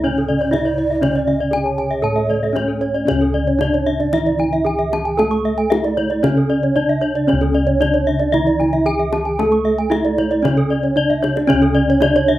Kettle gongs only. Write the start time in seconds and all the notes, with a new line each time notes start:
Already playing: C#2 A4
0.53 D4
1.02 C#4
1.52 D4
2.02 A2
2.54 D4
3.05 C#4
3.10 C#2
4.65 D4
5.19 A4
5.71 D4
6.23 C#3
6.76 D4
7.28 C#4
7.33 C#2
7.80 D4
8.85 D4
9.39 A4
9.91 D4
10.45 C#3
10.96 D4
11.48 C#4
11.54 C#2
12.01 D4